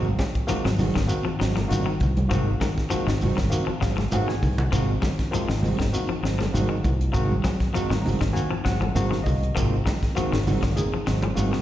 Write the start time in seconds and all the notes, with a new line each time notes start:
Already playing: G#1
0.05 high conga
0.19 muted clean electric guitar stroke, kick, snare, closed hi-hat, high conga, shekere
0.35 muted clean electric guitar stroke, kick, closed hi-hat
0.47 D#3 F3 G#3 A#3 C4 D#4 F#4, closed hi-hat, shekere
0.65 G#1 F#3, muted clean electric guitar stroke, snare, high conga
0.79 D#3 G#3 C4 F#4, open hi-hat, high conga, low conga, shekere
0.95 G#1 D#3, muted clean electric guitar stroke, kick, snare
1.07 A#3 C4 D#4 F#4, closed hi-hat, shekere
1.25 F3, muted clean electric guitar stroke, muted fingered electric bass stroke
1.40 G#1 D#3 F#3 G#3 C4 F#4, snare, closed hi-hat, shekere
1.56 F3, muted clean electric guitar stroke, snare, closed hi-hat, high conga
1.68 G#1 D#3 A#3 C4 D#4 F#4, muted clean electric guitar stroke, closed hi-hat
1.72 high conga, low conga, shekere
1.86 D#3
2.00 C2, muted clean electric guitar stroke, kick, closed hi-hat, low conga, shekere
2.17 muted clean electric guitar stroke, closed hi-hat, high conga
2.29 G#1 D#3 F3 G#3 A#3 C4 D#4 F#4, kick, closed hi-hat, shekere
2.61 D#3, muted clean electric guitar stroke, kick, snare, closed hi-hat, high conga, shekere
2.77 muted clean electric guitar stroke, kick, snare
2.89 D#3 F3 G#3 A#3 C4 D#4 F#4, closed hi-hat, shekere
3.07 G#1 D#3, muted clean electric guitar stroke, snare
3.21 D#3 G#3 C4 F#4, open hi-hat, high conga, low conga, shekere
3.37 G#1 D#3, muted clean electric guitar stroke, kick, snare
3.50 A#3 C4 D#4 F#4, closed hi-hat, shekere
3.67 F3, muted clean electric guitar stroke, muted fingered electric bass stroke
3.81 G#1 F#3 G#3 C4 F#4 F5, kick, snare, closed hi-hat, shekere
3.97 F3, muted clean electric guitar stroke, snare, high conga
4.11 G#1 D#3 G#3 A#3 C4 D#4 F#4 F#5, closed hi-hat, high conga, shekere
4.28 D#3 G#5, snare
4.42 C2, muted clean electric guitar stroke, kick, open hi-hat, low conga, shekere
4.58 muted clean electric guitar stroke, closed hi-hat, low conga
4.71 G#1 F3 G#3 A#3 C4 D#4 F#4, muted clean electric guitar stroke, kick, closed hi-hat, shekere
5.02 D#3, muted clean electric guitar stroke, kick, snare, closed hi-hat, high conga, shekere
5.18 muted clean electric guitar stroke, kick, snare, closed hi-hat
5.31 D#3 F3 G#3 A#3 C4 D#4 F4 F#4, closed hi-hat, shekere
5.47 G#1 D#3, muted clean electric guitar stroke, snare
5.62 D#3 G#3 C4 F#4, open hi-hat, high conga, low conga, shekere
5.78 G#1 D#3, muted clean electric guitar stroke, kick, snare
5.93 A#3 C4 D#4 F#4, closed hi-hat, shekere
6.09 F3, muted fingered electric bass stroke, muted clean electric guitar stroke
6.23 G#1 D#3 F#3 G#3 C4 F#4, snare, closed hi-hat, shekere
6.39 F3, muted clean electric guitar stroke, snare, closed hi-hat, high conga
6.53 G#1 D#3 G#3 A#3 C4 D#4 F#4, closed hi-hat, high conga, low conga, shekere
6.69 D#3
6.84 C2, muted clean electric guitar stroke, kick, closed hi-hat, low conga, shekere
7.00 muted clean electric guitar stroke, closed hi-hat
7.12 G#1 D#3 G#3 A#3 C4 D#4 F#4, muted clean electric guitar stroke, kick, closed hi-hat, shekere
7.32 high conga
7.44 F#3, muted clean electric guitar stroke, kick, snare, closed hi-hat, high conga, shekere
7.60 muted clean electric guitar stroke, kick, snare
7.73 D#3 F3 G#3 A#3 C4 D#4 F#4, closed hi-hat, shekere
7.90 G#1 D#3, muted clean electric guitar stroke, snare, high conga
8.02 D#3 G#3 C4 A#5, high conga, low conga
8.06 F#4, open hi-hat, shekere
8.21 G#1 D#3, kick, snare
8.33 A#3 C4 D#4 F#4 G#5, closed hi-hat, shekere
8.50 F3, muted fingered electric bass stroke, muted clean electric guitar stroke
8.64 G#1 D#3 F#3 G#3 C4 F#4 F#5, kick, snare, closed hi-hat, shekere
8.81 F3, muted clean electric guitar stroke, high conga
8.95 G#1 D#3 G#3 A#3 C4 D#4 F#4 F5, closed hi-hat, high conga, low conga, shekere
9.11 D#3, snare
9.24 C2 D#5, muted clean electric guitar stroke, kick, open hi-hat, low conga, shekere
9.42 muted clean electric guitar stroke, closed hi-hat
9.55 G#1 D#3 F3 G#3 A#3 C4 D#4 F4 F#4, kick, closed hi-hat, shekere
9.86 D#3, muted clean electric guitar stroke, kick, snare, closed hi-hat, high conga, shekere
10.02 muted clean electric guitar stroke, kick, snare, closed hi-hat
10.15 D#3 F3 G#3 A#3 C4 D#4 F#4, closed hi-hat, shekere
10.32 G#1 D#3, muted clean electric guitar stroke, snare
10.47 D#3 G#3 C4 F#4, open hi-hat, high conga, low conga, shekere
10.63 G#1 D#3, muted clean electric guitar stroke, kick, snare
10.75 A#3 C4 D#4 G#4, closed hi-hat, low conga, shekere
10.93 F3, muted clean electric guitar stroke, muted fingered electric bass stroke
11.07 G#1 D#3 F#3 G#3 C4 F#4, snare, closed hi-hat, shekere
11.22 F3, muted clean electric guitar stroke, closed hi-hat, high conga
11.35 G#1 D#3 G#3 A#3 C4 D#4 F#4, closed hi-hat, high conga, shekere
11.53 D#3, snare